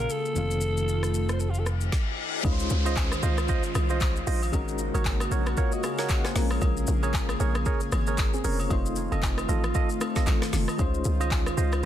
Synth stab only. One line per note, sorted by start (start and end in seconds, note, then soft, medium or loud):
2.85 2.96 F4 medium
2.85 2.96 C5 medium
2.85 2.97 D#5 medium
3.23 3.37 F4 medium
3.23 3.37 C5 medium
3.23 3.38 D#5 medium
3.49 3.63 F4 medium
3.49 3.64 C5 medium
3.49 3.64 D#5 loud
3.90 4.01 F4 medium
3.90 4.01 C5 medium
3.90 4.01 D#5 medium
4.27 4.42 F4 medium
4.27 4.42 C5 medium
4.27 4.42 D#5 medium
4.94 5.05 F#4 medium
4.94 5.05 A#4 medium
4.94 5.05 C#5 medium
5.31 5.46 F#4 medium
5.31 5.46 A#4 medium
5.31 5.46 C#5 medium
5.57 5.72 F#4 medium
5.57 5.72 A#4 medium
5.57 5.72 C#5 loud
5.98 6.09 F#4 medium
5.98 6.09 A#4 medium
5.98 6.09 C#5 medium
7.03 7.14 G#4 medium
7.03 7.14 A#4 medium
7.03 7.14 C#5 medium
7.40 7.55 G#4 medium
7.40 7.55 A#4 medium
7.40 7.55 C#5 medium
7.66 7.81 G#4 medium
7.66 7.81 A#4 medium
7.66 7.81 C#5 loud
8.07 8.18 G#4 medium
8.07 8.18 A#4 medium
8.07 8.18 C#5 medium
8.44 8.59 G#4 medium
8.44 8.59 A#4 medium
8.44 8.59 C#5 medium
9.12 9.22 F4 medium
9.12 9.22 A4 medium
9.12 9.23 D#5 medium
9.48 9.63 F4 medium
9.48 9.63 A4 medium
9.48 9.64 D#5 medium
9.75 9.89 F4 loud
9.75 9.90 A4 medium
9.75 9.90 D#5 loud
10.16 10.27 F4 medium
10.16 10.27 A4 medium
10.16 10.27 D#5 medium
11.20 11.31 F4 medium
11.20 11.31 C5 medium
11.20 11.31 D#5 medium
11.57 11.72 F4 medium
11.57 11.72 C5 medium
11.57 11.72 D#5 medium